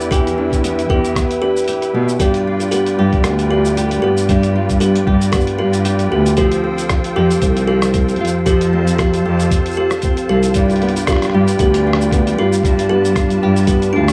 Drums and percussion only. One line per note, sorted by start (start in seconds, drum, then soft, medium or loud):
0.01 shaker medium
0.11 kick loud
0.11 closed hi-hat medium
0.11 shaker soft
0.27 closed hi-hat soft
0.27 shaker soft
0.52 kick medium
0.52 closed hi-hat soft
0.52 shaker medium
0.64 closed hi-hat medium
0.64 shaker soft
0.79 closed hi-hat soft
0.79 shaker soft
0.89 kick medium
1.05 closed hi-hat soft
1.05 shaker medium
1.15 kick medium
1.15 cross-stick medium
1.15 closed hi-hat medium
1.15 shaker medium
1.31 closed hi-hat soft
1.31 shaker soft
1.57 closed hi-hat soft
1.57 shaker medium
1.64 closed hi-hat soft
1.68 closed hi-hat medium
1.68 shaker medium
1.73 closed hi-hat soft
1.82 closed hi-hat soft
1.82 shaker soft
2.09 shaker medium
2.20 kick loud
2.20 closed hi-hat medium
2.20 shaker soft
2.34 closed hi-hat soft
2.34 shaker soft
2.60 closed hi-hat soft
2.60 shaker medium
2.72 closed hi-hat medium
2.72 shaker soft
2.86 closed hi-hat soft
2.86 shaker soft
3.13 kick medium
3.13 closed hi-hat soft
3.24 cross-stick medium
3.24 closed hi-hat medium
3.24 shaker medium
3.39 closed hi-hat soft
3.39 shaker soft
3.65 shaker medium
3.77 closed hi-hat medium
3.77 shaker soft
3.91 closed hi-hat soft
3.91 shaker soft
4.17 shaker medium
4.29 kick loud
4.29 closed hi-hat medium
4.29 shaker soft
4.43 closed hi-hat soft
4.43 shaker soft
4.69 kick medium
4.69 closed hi-hat soft
4.69 shaker medium
4.81 closed hi-hat medium
4.81 shaker medium
4.96 closed hi-hat soft
4.96 shaker soft
5.07 kick medium
5.21 closed hi-hat soft
5.21 shaker medium
5.33 kick medium
5.33 cross-stick medium
5.33 closed hi-hat medium
5.33 shaker medium
5.40 shaker soft
5.47 closed hi-hat soft
5.73 closed hi-hat soft
5.73 shaker medium
5.85 closed hi-hat medium
5.85 shaker soft
5.99 closed hi-hat soft
5.99 shaker soft
6.26 closed hi-hat soft
6.26 shaker medium
6.37 kick medium
6.37 closed hi-hat medium
6.37 shaker soft
6.52 closed hi-hat soft
6.52 shaker soft
6.78 closed hi-hat soft
6.78 shaker medium
6.89 kick loud
6.89 cross-stick medium
6.89 closed hi-hat medium
6.89 shaker medium
7.04 closed hi-hat soft
7.04 shaker soft
7.31 closed hi-hat soft
7.31 shaker medium
7.42 kick loud
7.42 closed hi-hat medium
7.42 shaker medium
7.57 closed hi-hat soft
7.57 shaker soft
7.82 cross-stick medium
7.82 shaker medium
7.94 kick loud
7.94 closed hi-hat medium
7.94 shaker medium
8.09 closed hi-hat soft
8.09 shaker soft
8.16 closed hi-hat soft
8.25 closed hi-hat soft
8.25 shaker medium
8.46 kick loud
8.46 closed hi-hat medium
8.46 shaker medium
8.61 closed hi-hat soft
8.61 shaker soft
8.87 closed hi-hat soft
8.87 shaker medium
8.98 kick loud
8.98 cross-stick medium
8.98 closed hi-hat medium
8.98 shaker medium
9.14 closed hi-hat soft
9.14 shaker soft
9.40 closed hi-hat soft
9.40 shaker medium
9.51 kick loud
9.51 closed hi-hat medium
9.51 shaker medium
9.66 closed hi-hat soft
9.66 shaker soft
9.68 shaker soft
9.71 shaker soft
9.72 shaker soft
9.74 shaker soft
9.91 cross-stick medium
9.91 closed hi-hat soft
9.91 shaker medium
10.02 kick loud
10.02 closed hi-hat medium
10.02 shaker medium
10.17 closed hi-hat soft
10.17 shaker soft
10.43 closed hi-hat soft
10.43 shaker medium
10.54 kick loud
10.54 closed hi-hat medium
10.54 shaker medium
10.70 closed hi-hat soft
10.70 shaker soft
10.76 closed hi-hat soft
10.82 closed hi-hat soft
10.89 closed hi-hat soft
10.96 closed hi-hat soft
10.96 shaker medium
11.07 kick loud
11.07 cross-stick medium
11.07 closed hi-hat medium
11.07 shaker medium
11.12 cross-stick medium
11.16 cross-stick soft
11.22 cross-stick soft
11.22 closed hi-hat soft
11.22 shaker soft
11.25 cross-stick soft
11.30 cross-stick soft
11.48 closed hi-hat soft
11.48 shaker medium
11.59 kick loud
11.59 closed hi-hat medium
11.59 shaker medium
11.74 closed hi-hat soft
11.74 shaker soft
11.93 cross-stick medium
12.01 shaker medium
12.11 kick loud
12.11 closed hi-hat medium
12.11 shaker medium
12.27 closed hi-hat soft
12.27 shaker soft
12.53 shaker medium
12.63 kick loud
12.63 closed hi-hat medium
12.63 shaker medium
12.79 closed hi-hat soft
12.79 shaker soft
13.05 closed hi-hat soft
13.05 shaker medium
13.16 kick loud
13.16 cross-stick medium
13.16 closed hi-hat medium
13.16 shaker medium
13.30 closed hi-hat soft
13.30 shaker soft
13.56 closed hi-hat soft
13.56 shaker medium
13.58 closed hi-hat soft
13.61 closed hi-hat soft
13.63 closed hi-hat soft
13.65 closed hi-hat soft
13.67 kick loud
13.67 closed hi-hat medium
13.67 shaker medium
13.82 closed hi-hat soft
13.82 shaker soft
14.08 cross-stick medium
14.08 closed hi-hat soft
14.08 shaker medium